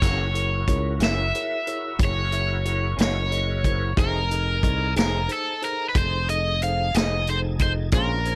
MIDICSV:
0, 0, Header, 1, 7, 480
1, 0, Start_track
1, 0, Tempo, 659413
1, 15, Time_signature, 12, 3, 24, 8
1, 6080, End_track
2, 0, Start_track
2, 0, Title_t, "Overdriven electric guitar"
2, 0, Program_c, 0, 29
2, 0, Note_on_c, 0, 73, 80
2, 719, Note_off_c, 0, 73, 0
2, 758, Note_on_c, 0, 76, 77
2, 1438, Note_off_c, 0, 76, 0
2, 1488, Note_on_c, 0, 73, 74
2, 2163, Note_off_c, 0, 73, 0
2, 2198, Note_on_c, 0, 73, 90
2, 2903, Note_off_c, 0, 73, 0
2, 2906, Note_on_c, 0, 70, 80
2, 3591, Note_off_c, 0, 70, 0
2, 3632, Note_on_c, 0, 70, 73
2, 3870, Note_off_c, 0, 70, 0
2, 3878, Note_on_c, 0, 69, 77
2, 4091, Note_off_c, 0, 69, 0
2, 4110, Note_on_c, 0, 70, 79
2, 4286, Note_off_c, 0, 70, 0
2, 4289, Note_on_c, 0, 71, 71
2, 4338, Note_off_c, 0, 71, 0
2, 4353, Note_on_c, 0, 72, 87
2, 4583, Note_off_c, 0, 72, 0
2, 4586, Note_on_c, 0, 75, 91
2, 4804, Note_off_c, 0, 75, 0
2, 4829, Note_on_c, 0, 77, 83
2, 5046, Note_off_c, 0, 77, 0
2, 5069, Note_on_c, 0, 75, 88
2, 5286, Note_off_c, 0, 75, 0
2, 5314, Note_on_c, 0, 72, 84
2, 5376, Note_off_c, 0, 72, 0
2, 5548, Note_on_c, 0, 72, 91
2, 5611, Note_off_c, 0, 72, 0
2, 5783, Note_on_c, 0, 70, 75
2, 6080, Note_off_c, 0, 70, 0
2, 6080, End_track
3, 0, Start_track
3, 0, Title_t, "Tine electric piano"
3, 0, Program_c, 1, 4
3, 12, Note_on_c, 1, 64, 60
3, 17, Note_on_c, 1, 68, 56
3, 18, Note_on_c, 1, 73, 62
3, 19, Note_on_c, 1, 70, 50
3, 194, Note_off_c, 1, 64, 0
3, 196, Note_off_c, 1, 68, 0
3, 197, Note_off_c, 1, 70, 0
3, 197, Note_off_c, 1, 73, 0
3, 250, Note_on_c, 1, 64, 51
3, 252, Note_on_c, 1, 68, 39
3, 253, Note_on_c, 1, 70, 43
3, 256, Note_on_c, 1, 73, 51
3, 433, Note_off_c, 1, 64, 0
3, 434, Note_off_c, 1, 68, 0
3, 434, Note_off_c, 1, 70, 0
3, 436, Note_off_c, 1, 73, 0
3, 496, Note_on_c, 1, 64, 59
3, 497, Note_on_c, 1, 68, 53
3, 498, Note_on_c, 1, 73, 62
3, 500, Note_on_c, 1, 70, 55
3, 676, Note_off_c, 1, 64, 0
3, 676, Note_off_c, 1, 68, 0
3, 677, Note_off_c, 1, 73, 0
3, 678, Note_off_c, 1, 70, 0
3, 734, Note_on_c, 1, 68, 49
3, 735, Note_on_c, 1, 64, 54
3, 735, Note_on_c, 1, 76, 59
3, 739, Note_on_c, 1, 70, 46
3, 915, Note_off_c, 1, 64, 0
3, 915, Note_off_c, 1, 68, 0
3, 915, Note_off_c, 1, 76, 0
3, 917, Note_off_c, 1, 70, 0
3, 981, Note_on_c, 1, 64, 47
3, 982, Note_on_c, 1, 68, 46
3, 984, Note_on_c, 1, 70, 46
3, 984, Note_on_c, 1, 73, 53
3, 1158, Note_off_c, 1, 64, 0
3, 1159, Note_off_c, 1, 68, 0
3, 1160, Note_off_c, 1, 70, 0
3, 1160, Note_off_c, 1, 73, 0
3, 1217, Note_on_c, 1, 64, 51
3, 1218, Note_on_c, 1, 68, 47
3, 1219, Note_on_c, 1, 70, 49
3, 1221, Note_on_c, 1, 73, 59
3, 1396, Note_off_c, 1, 64, 0
3, 1397, Note_off_c, 1, 68, 0
3, 1397, Note_off_c, 1, 70, 0
3, 1398, Note_off_c, 1, 73, 0
3, 1450, Note_on_c, 1, 68, 43
3, 1450, Note_on_c, 1, 70, 45
3, 1452, Note_on_c, 1, 64, 48
3, 1455, Note_on_c, 1, 73, 53
3, 1633, Note_off_c, 1, 68, 0
3, 1633, Note_off_c, 1, 70, 0
3, 1634, Note_off_c, 1, 64, 0
3, 1635, Note_off_c, 1, 73, 0
3, 1690, Note_on_c, 1, 64, 49
3, 1690, Note_on_c, 1, 68, 40
3, 1692, Note_on_c, 1, 70, 45
3, 1694, Note_on_c, 1, 76, 55
3, 1873, Note_off_c, 1, 64, 0
3, 1873, Note_off_c, 1, 68, 0
3, 1874, Note_off_c, 1, 70, 0
3, 1875, Note_off_c, 1, 76, 0
3, 1930, Note_on_c, 1, 64, 57
3, 1931, Note_on_c, 1, 70, 51
3, 1932, Note_on_c, 1, 68, 49
3, 1934, Note_on_c, 1, 73, 58
3, 2113, Note_off_c, 1, 64, 0
3, 2113, Note_off_c, 1, 70, 0
3, 2114, Note_off_c, 1, 68, 0
3, 2115, Note_off_c, 1, 73, 0
3, 2179, Note_on_c, 1, 68, 45
3, 2179, Note_on_c, 1, 70, 45
3, 2182, Note_on_c, 1, 64, 48
3, 2187, Note_on_c, 1, 75, 53
3, 2357, Note_off_c, 1, 68, 0
3, 2357, Note_off_c, 1, 70, 0
3, 2359, Note_off_c, 1, 64, 0
3, 2361, Note_off_c, 1, 75, 0
3, 2409, Note_on_c, 1, 64, 52
3, 2410, Note_on_c, 1, 68, 49
3, 2410, Note_on_c, 1, 70, 50
3, 2415, Note_on_c, 1, 75, 58
3, 2592, Note_off_c, 1, 64, 0
3, 2593, Note_off_c, 1, 68, 0
3, 2593, Note_off_c, 1, 70, 0
3, 2595, Note_off_c, 1, 75, 0
3, 2653, Note_on_c, 1, 64, 52
3, 2655, Note_on_c, 1, 70, 49
3, 2655, Note_on_c, 1, 72, 57
3, 2657, Note_on_c, 1, 68, 46
3, 2834, Note_off_c, 1, 64, 0
3, 2835, Note_off_c, 1, 70, 0
3, 2835, Note_off_c, 1, 72, 0
3, 2836, Note_off_c, 1, 68, 0
3, 2890, Note_on_c, 1, 63, 59
3, 2890, Note_on_c, 1, 68, 57
3, 2894, Note_on_c, 1, 69, 59
3, 2895, Note_on_c, 1, 72, 61
3, 3073, Note_off_c, 1, 63, 0
3, 3073, Note_off_c, 1, 68, 0
3, 3075, Note_off_c, 1, 69, 0
3, 3075, Note_off_c, 1, 72, 0
3, 3131, Note_on_c, 1, 63, 45
3, 3137, Note_on_c, 1, 68, 45
3, 3137, Note_on_c, 1, 69, 42
3, 3139, Note_on_c, 1, 75, 50
3, 3313, Note_off_c, 1, 63, 0
3, 3316, Note_off_c, 1, 68, 0
3, 3316, Note_off_c, 1, 69, 0
3, 3317, Note_off_c, 1, 75, 0
3, 3372, Note_on_c, 1, 68, 46
3, 3373, Note_on_c, 1, 69, 48
3, 3374, Note_on_c, 1, 63, 52
3, 3374, Note_on_c, 1, 75, 54
3, 3554, Note_off_c, 1, 68, 0
3, 3554, Note_off_c, 1, 69, 0
3, 3555, Note_off_c, 1, 63, 0
3, 3555, Note_off_c, 1, 75, 0
3, 3608, Note_on_c, 1, 63, 55
3, 3609, Note_on_c, 1, 68, 52
3, 3610, Note_on_c, 1, 69, 52
3, 3613, Note_on_c, 1, 72, 55
3, 3792, Note_off_c, 1, 63, 0
3, 3792, Note_off_c, 1, 68, 0
3, 3793, Note_off_c, 1, 69, 0
3, 3794, Note_off_c, 1, 72, 0
3, 3843, Note_on_c, 1, 63, 49
3, 3844, Note_on_c, 1, 68, 44
3, 3846, Note_on_c, 1, 72, 57
3, 3848, Note_on_c, 1, 69, 44
3, 4029, Note_off_c, 1, 63, 0
3, 4030, Note_off_c, 1, 68, 0
3, 4031, Note_off_c, 1, 72, 0
3, 4032, Note_off_c, 1, 69, 0
3, 4092, Note_on_c, 1, 63, 54
3, 4092, Note_on_c, 1, 69, 49
3, 4093, Note_on_c, 1, 72, 61
3, 4094, Note_on_c, 1, 68, 51
3, 4273, Note_off_c, 1, 63, 0
3, 4274, Note_off_c, 1, 68, 0
3, 4274, Note_off_c, 1, 69, 0
3, 4274, Note_off_c, 1, 72, 0
3, 4338, Note_on_c, 1, 69, 46
3, 4339, Note_on_c, 1, 63, 47
3, 4339, Note_on_c, 1, 72, 56
3, 4342, Note_on_c, 1, 68, 46
3, 4516, Note_off_c, 1, 69, 0
3, 4517, Note_off_c, 1, 63, 0
3, 4517, Note_off_c, 1, 72, 0
3, 4519, Note_off_c, 1, 68, 0
3, 4580, Note_on_c, 1, 63, 50
3, 4580, Note_on_c, 1, 68, 45
3, 4582, Note_on_c, 1, 69, 46
3, 4583, Note_on_c, 1, 75, 54
3, 4757, Note_off_c, 1, 63, 0
3, 4758, Note_off_c, 1, 68, 0
3, 4758, Note_off_c, 1, 69, 0
3, 4759, Note_off_c, 1, 75, 0
3, 4824, Note_on_c, 1, 68, 52
3, 4826, Note_on_c, 1, 63, 58
3, 4826, Note_on_c, 1, 69, 50
3, 4826, Note_on_c, 1, 72, 65
3, 4999, Note_off_c, 1, 68, 0
3, 5001, Note_off_c, 1, 63, 0
3, 5001, Note_off_c, 1, 69, 0
3, 5001, Note_off_c, 1, 72, 0
3, 5064, Note_on_c, 1, 63, 52
3, 5065, Note_on_c, 1, 68, 45
3, 5068, Note_on_c, 1, 69, 46
3, 5068, Note_on_c, 1, 72, 57
3, 5239, Note_off_c, 1, 63, 0
3, 5240, Note_off_c, 1, 68, 0
3, 5241, Note_off_c, 1, 69, 0
3, 5241, Note_off_c, 1, 72, 0
3, 5305, Note_on_c, 1, 63, 55
3, 5306, Note_on_c, 1, 68, 49
3, 5308, Note_on_c, 1, 69, 48
3, 5309, Note_on_c, 1, 72, 60
3, 5480, Note_off_c, 1, 63, 0
3, 5481, Note_off_c, 1, 68, 0
3, 5482, Note_off_c, 1, 69, 0
3, 5482, Note_off_c, 1, 72, 0
3, 5540, Note_on_c, 1, 63, 54
3, 5542, Note_on_c, 1, 68, 46
3, 5543, Note_on_c, 1, 69, 49
3, 5546, Note_on_c, 1, 75, 59
3, 5717, Note_off_c, 1, 63, 0
3, 5719, Note_off_c, 1, 68, 0
3, 5719, Note_off_c, 1, 69, 0
3, 5720, Note_off_c, 1, 75, 0
3, 5773, Note_on_c, 1, 61, 61
3, 5776, Note_on_c, 1, 65, 53
3, 5776, Note_on_c, 1, 68, 57
3, 5777, Note_on_c, 1, 72, 69
3, 5954, Note_off_c, 1, 61, 0
3, 5955, Note_off_c, 1, 65, 0
3, 5956, Note_off_c, 1, 68, 0
3, 5956, Note_off_c, 1, 72, 0
3, 6009, Note_on_c, 1, 61, 49
3, 6013, Note_on_c, 1, 65, 45
3, 6013, Note_on_c, 1, 72, 50
3, 6014, Note_on_c, 1, 68, 44
3, 6080, Note_off_c, 1, 61, 0
3, 6080, Note_off_c, 1, 65, 0
3, 6080, Note_off_c, 1, 68, 0
3, 6080, Note_off_c, 1, 72, 0
3, 6080, End_track
4, 0, Start_track
4, 0, Title_t, "Tonewheel organ"
4, 0, Program_c, 2, 16
4, 9, Note_on_c, 2, 64, 57
4, 9, Note_on_c, 2, 66, 59
4, 9, Note_on_c, 2, 70, 59
4, 2864, Note_off_c, 2, 64, 0
4, 2864, Note_off_c, 2, 66, 0
4, 2864, Note_off_c, 2, 70, 0
4, 2898, Note_on_c, 2, 81, 61
4, 2902, Note_on_c, 2, 80, 61
4, 2905, Note_on_c, 2, 63, 60
4, 5747, Note_off_c, 2, 81, 0
4, 5749, Note_off_c, 2, 80, 0
4, 5751, Note_off_c, 2, 63, 0
4, 5766, Note_on_c, 2, 62, 60
4, 5767, Note_on_c, 2, 59, 62
4, 5771, Note_on_c, 2, 81, 62
4, 6004, Note_on_c, 2, 70, 66
4, 6007, Note_on_c, 2, 61, 69
4, 6011, Note_off_c, 2, 59, 0
4, 6011, Note_off_c, 2, 62, 0
4, 6011, Note_on_c, 2, 68, 62
4, 6013, Note_off_c, 2, 81, 0
4, 6080, Note_off_c, 2, 61, 0
4, 6080, Note_off_c, 2, 68, 0
4, 6080, Note_off_c, 2, 70, 0
4, 6080, End_track
5, 0, Start_track
5, 0, Title_t, "Clean electric guitar"
5, 0, Program_c, 3, 27
5, 20, Note_on_c, 3, 42, 63
5, 23, Note_on_c, 3, 52, 66
5, 25, Note_on_c, 3, 58, 61
5, 33, Note_on_c, 3, 61, 67
5, 162, Note_off_c, 3, 42, 0
5, 163, Note_off_c, 3, 52, 0
5, 165, Note_off_c, 3, 58, 0
5, 168, Note_off_c, 3, 61, 0
5, 730, Note_on_c, 3, 61, 60
5, 737, Note_on_c, 3, 58, 48
5, 743, Note_on_c, 3, 52, 51
5, 746, Note_on_c, 3, 42, 49
5, 877, Note_off_c, 3, 61, 0
5, 880, Note_off_c, 3, 58, 0
5, 883, Note_off_c, 3, 52, 0
5, 885, Note_off_c, 3, 42, 0
5, 2160, Note_on_c, 3, 61, 65
5, 2165, Note_on_c, 3, 58, 58
5, 2172, Note_on_c, 3, 52, 56
5, 2177, Note_on_c, 3, 42, 54
5, 2312, Note_off_c, 3, 61, 0
5, 2314, Note_off_c, 3, 58, 0
5, 2318, Note_off_c, 3, 52, 0
5, 2320, Note_off_c, 3, 42, 0
5, 2883, Note_on_c, 3, 53, 65
5, 2890, Note_on_c, 3, 57, 59
5, 2895, Note_on_c, 3, 63, 76
5, 2902, Note_on_c, 3, 68, 70
5, 3033, Note_off_c, 3, 53, 0
5, 3037, Note_off_c, 3, 57, 0
5, 3039, Note_off_c, 3, 63, 0
5, 3043, Note_off_c, 3, 68, 0
5, 3617, Note_on_c, 3, 68, 57
5, 3621, Note_on_c, 3, 63, 58
5, 3626, Note_on_c, 3, 57, 48
5, 3630, Note_on_c, 3, 53, 50
5, 3760, Note_off_c, 3, 68, 0
5, 3762, Note_off_c, 3, 63, 0
5, 3765, Note_off_c, 3, 57, 0
5, 3767, Note_off_c, 3, 53, 0
5, 5056, Note_on_c, 3, 68, 61
5, 5063, Note_on_c, 3, 63, 59
5, 5067, Note_on_c, 3, 57, 60
5, 5072, Note_on_c, 3, 53, 57
5, 5199, Note_off_c, 3, 68, 0
5, 5203, Note_off_c, 3, 63, 0
5, 5205, Note_off_c, 3, 57, 0
5, 5208, Note_off_c, 3, 53, 0
5, 5767, Note_on_c, 3, 46, 63
5, 5772, Note_on_c, 3, 56, 63
5, 5779, Note_on_c, 3, 61, 73
5, 5786, Note_on_c, 3, 65, 73
5, 5915, Note_off_c, 3, 46, 0
5, 5917, Note_off_c, 3, 56, 0
5, 5921, Note_off_c, 3, 61, 0
5, 5924, Note_off_c, 3, 65, 0
5, 6080, End_track
6, 0, Start_track
6, 0, Title_t, "Fingered electric bass"
6, 0, Program_c, 4, 33
6, 11, Note_on_c, 4, 30, 88
6, 464, Note_off_c, 4, 30, 0
6, 494, Note_on_c, 4, 37, 75
6, 715, Note_off_c, 4, 37, 0
6, 729, Note_on_c, 4, 30, 89
6, 953, Note_off_c, 4, 30, 0
6, 1447, Note_on_c, 4, 30, 82
6, 2142, Note_off_c, 4, 30, 0
6, 2173, Note_on_c, 4, 30, 91
6, 2865, Note_off_c, 4, 30, 0
6, 2894, Note_on_c, 4, 29, 89
6, 3346, Note_off_c, 4, 29, 0
6, 3371, Note_on_c, 4, 36, 81
6, 3594, Note_off_c, 4, 36, 0
6, 3614, Note_on_c, 4, 29, 92
6, 3836, Note_off_c, 4, 29, 0
6, 4332, Note_on_c, 4, 29, 78
6, 5024, Note_off_c, 4, 29, 0
6, 5056, Note_on_c, 4, 29, 95
6, 5746, Note_off_c, 4, 29, 0
6, 5767, Note_on_c, 4, 34, 95
6, 6080, Note_off_c, 4, 34, 0
6, 6080, End_track
7, 0, Start_track
7, 0, Title_t, "Drums"
7, 15, Note_on_c, 9, 36, 99
7, 19, Note_on_c, 9, 42, 70
7, 19, Note_on_c, 9, 55, 68
7, 88, Note_off_c, 9, 36, 0
7, 91, Note_off_c, 9, 42, 0
7, 91, Note_off_c, 9, 55, 0
7, 255, Note_on_c, 9, 42, 58
7, 327, Note_off_c, 9, 42, 0
7, 493, Note_on_c, 9, 36, 72
7, 495, Note_on_c, 9, 42, 57
7, 566, Note_off_c, 9, 36, 0
7, 568, Note_off_c, 9, 42, 0
7, 728, Note_on_c, 9, 42, 75
7, 745, Note_on_c, 9, 38, 94
7, 801, Note_off_c, 9, 42, 0
7, 818, Note_off_c, 9, 38, 0
7, 980, Note_on_c, 9, 42, 56
7, 1052, Note_off_c, 9, 42, 0
7, 1215, Note_on_c, 9, 42, 59
7, 1288, Note_off_c, 9, 42, 0
7, 1452, Note_on_c, 9, 36, 98
7, 1455, Note_on_c, 9, 42, 72
7, 1525, Note_off_c, 9, 36, 0
7, 1528, Note_off_c, 9, 42, 0
7, 1688, Note_on_c, 9, 42, 57
7, 1761, Note_off_c, 9, 42, 0
7, 1931, Note_on_c, 9, 42, 56
7, 2004, Note_off_c, 9, 42, 0
7, 2172, Note_on_c, 9, 42, 72
7, 2188, Note_on_c, 9, 38, 106
7, 2245, Note_off_c, 9, 42, 0
7, 2261, Note_off_c, 9, 38, 0
7, 2416, Note_on_c, 9, 42, 53
7, 2488, Note_off_c, 9, 42, 0
7, 2652, Note_on_c, 9, 36, 70
7, 2654, Note_on_c, 9, 42, 53
7, 2725, Note_off_c, 9, 36, 0
7, 2727, Note_off_c, 9, 42, 0
7, 2892, Note_on_c, 9, 36, 107
7, 2896, Note_on_c, 9, 42, 70
7, 2964, Note_off_c, 9, 36, 0
7, 2969, Note_off_c, 9, 42, 0
7, 3136, Note_on_c, 9, 42, 55
7, 3209, Note_off_c, 9, 42, 0
7, 3371, Note_on_c, 9, 36, 75
7, 3374, Note_on_c, 9, 42, 56
7, 3444, Note_off_c, 9, 36, 0
7, 3447, Note_off_c, 9, 42, 0
7, 3612, Note_on_c, 9, 42, 67
7, 3629, Note_on_c, 9, 38, 95
7, 3685, Note_off_c, 9, 42, 0
7, 3702, Note_off_c, 9, 38, 0
7, 3850, Note_on_c, 9, 42, 57
7, 3923, Note_off_c, 9, 42, 0
7, 4093, Note_on_c, 9, 42, 58
7, 4166, Note_off_c, 9, 42, 0
7, 4330, Note_on_c, 9, 42, 77
7, 4331, Note_on_c, 9, 36, 93
7, 4403, Note_off_c, 9, 42, 0
7, 4404, Note_off_c, 9, 36, 0
7, 4578, Note_on_c, 9, 42, 64
7, 4650, Note_off_c, 9, 42, 0
7, 4816, Note_on_c, 9, 42, 61
7, 4889, Note_off_c, 9, 42, 0
7, 5054, Note_on_c, 9, 42, 86
7, 5071, Note_on_c, 9, 38, 108
7, 5127, Note_off_c, 9, 42, 0
7, 5143, Note_off_c, 9, 38, 0
7, 5292, Note_on_c, 9, 42, 56
7, 5365, Note_off_c, 9, 42, 0
7, 5526, Note_on_c, 9, 42, 58
7, 5530, Note_on_c, 9, 36, 73
7, 5599, Note_off_c, 9, 42, 0
7, 5603, Note_off_c, 9, 36, 0
7, 5762, Note_on_c, 9, 42, 75
7, 5769, Note_on_c, 9, 36, 102
7, 5834, Note_off_c, 9, 42, 0
7, 5841, Note_off_c, 9, 36, 0
7, 6007, Note_on_c, 9, 42, 53
7, 6080, Note_off_c, 9, 42, 0
7, 6080, End_track
0, 0, End_of_file